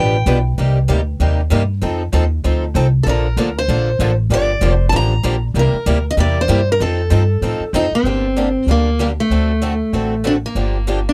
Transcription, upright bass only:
Already playing: A1
0.26 B1
0.58 C2
0.89 D2
1.20 D#2
1.51 G2
1.82 F2
2.13 D#2
2.44 D2
2.75 C2
3.06 A#1
3.37 D2
3.68 A#1
3.99 A1
4.30 G1
4.61 F1
4.93 A1
5.24 A#1
5.54 C2
5.73 muted upright bass stroke
5.86 D2
6.17 E2
6.49 G2
6.80 F2
7.11 G2
7.42 A2
7.60 muted upright bass stroke
7.73 F2
7.91 muted upright bass stroke
8.04 G1
8.66 D2
9.30 D2
9.93 A1
10.55 G1

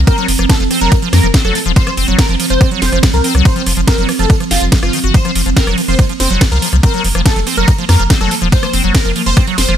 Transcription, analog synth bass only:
0.28 F1
0.39 F1
0.60 F1
0.81 F1
1.13 F2
1.23 F1
1.45 F1
1.66 D#1
1.97 F1
2.08 F1
2.29 F1
2.50 F1
2.82 F1
2.92 F1
3.14 C2
3.35 C2
3.66 F1
3.77 F1
3.98 F1
4.19 F1
4.51 F1
4.61 F1
4.83 F#1
5.04 F#1
5.35 F1
5.46 F1
5.67 F1
5.88 F1
6.20 F1
6.30 F1
6.52 C2
6.73 C2
7.04 F1
7.15 F1
7.36 F1
7.57 F1
7.89 F2
8.00 F1
8.21 F1
8.42 D#1
8.73 F1
8.84 F1
9.05 F1
9.26 F1
9.58 F1
9.69 F1

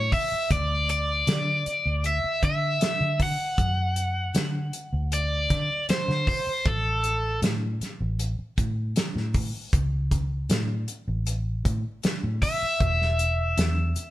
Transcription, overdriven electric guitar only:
Already playing: C#5
0.13 E5
0.52 D5
0.91 D5
2.06 E5
2.45 E5
3.23 F#5
5.14 D5
5.90 C5
6.28 C5
6.67 A4
12.43 E5

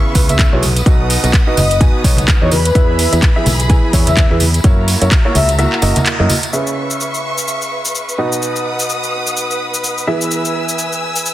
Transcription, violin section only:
Already playing: E4 B4 C#6
0.63 B4 F#5 D#6
2.52 E4 G#4 B5
4.64 F#4 A#5
6.53 B4 E5 C#6
8.18 F#5 D#6
10.07 G#5 E6

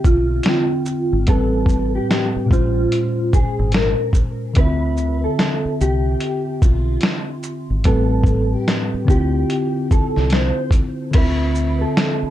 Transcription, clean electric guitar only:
0.06 F4
1.29 A4
1.95 G4
2.52 F4
3.34 G#4
3.75 A#4
4.58 B4
5.24 A4
5.81 G4
6.63 F4
7.86 A4
8.53 G4
9.10 G4
9.92 A4
10.33 C5
11.15 B4
11.81 A4

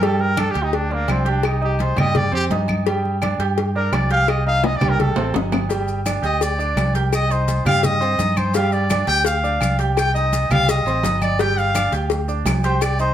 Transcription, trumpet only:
0.03 A4
0.21 A#4
0.39 A4
0.51 G4
0.63 D#4
0.75 D4
0.93 A#3
1.11 C4
1.29 D4
1.46 D#4
1.64 G4
1.82 C5
1.99 D#5
2.17 D5
2.35 G4
3.76 A#4
3.94 D5
4.12 F5
4.29 D#5
4.47 F5
4.65 D#5
4.77 D5
4.89 A#4
5.00 A4
6.25 D#5
6.42 D5
6.96 A#4
7.13 D#5
7.31 C5
7.66 F5
7.84 D#5
8.37 C5
8.55 F5
8.72 D5
9.08 G5
9.26 F5
9.79 D5
9.97 G5
10.14 D#5
10.51 F5
10.70 D#5
11.23 D5
11.40 G5
11.58 F5
12.65 C5
12.82 D5
13.00 C5

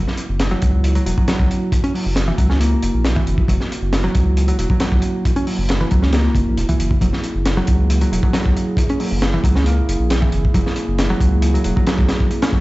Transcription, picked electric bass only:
0.51 F#3
0.95 F#3
1.06 F#3
1.17 F#3
1.28 F#3
1.84 C#4
1.94 F#3
2.28 E3
2.38 F#3
2.50 C#4
2.60 A#3
3.16 E3
3.48 F#3
4.04 F#3
4.48 F#3
4.59 F#3
4.70 F#3
4.81 F#3
5.36 C#4
5.47 F#3
5.81 E3
5.91 F#3
6.03 C#4
6.13 A#3
6.69 E3
7.01 F#3
7.57 F#3
8.01 F#3
8.12 F#3
8.23 F#3
8.34 F#3
8.90 C#4
9.00 F#3
9.34 E3
9.44 F#3
9.56 C#4
9.66 A#3
10.22 E3
10.54 F#3
11.10 F#3
11.54 F#3
11.64 F#3
11.76 F#3
11.87 F#3
12.43 C#4
12.53 F#3

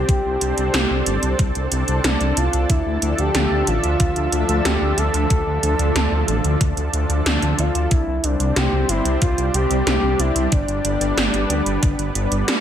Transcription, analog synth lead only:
0.09 G4
2.05 D4
2.37 F4
2.70 E4
3.19 G4
3.68 F4
4.65 G4
4.98 A4
5.31 A4
7.27 D4
7.59 F4
7.92 E4
8.24 D4
8.56 G4
8.89 E4
9.21 F4
9.54 G4
9.87 G4
10.19 E4
10.52 D4

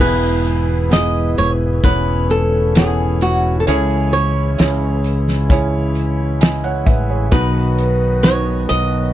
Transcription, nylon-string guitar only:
0.01 B4
0.93 D#5
1.38 C#5
1.84 B4
2.31 A4
2.77 G#4
3.22 F#4
3.60 A4
3.68 G#4
4.13 C#5
7.32 B4
8.23 C#5
8.69 D#5

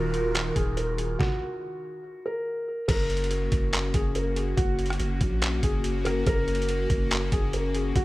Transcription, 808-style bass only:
Already playing: D#1
0.56 D#1
2.89 F#1
3.52 F#1
3.94 F#1
4.58 F#1
5.00 F#1
5.21 A#1
5.63 F#1
6.27 F#1
6.90 F#1
7.32 F#1
7.96 F#1

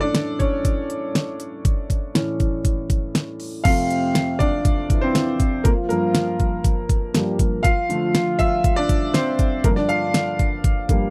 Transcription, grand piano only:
Already playing: A2 E3 A3 C#4 A4
0.01 D4 D5
0.39 C#4 C#5
2.14 A2 E3 C#4
3.64 F2 C3 A3 F4 F5
4.39 D4 D5
5.01 C4 C5
5.64 A#3 A#4
5.89 G2 F3 A#3 A#4
7.14 G2 F3 A#3
7.63 F4 F5
7.89 D3 F3 A3
8.39 F4 E5
8.76 D4 D5
9.14 C4 C5
9.64 G2 F3 A#3 A#4
9.76 D4 D5
9.89 F4 F5
10.89 G2 F3 A#3

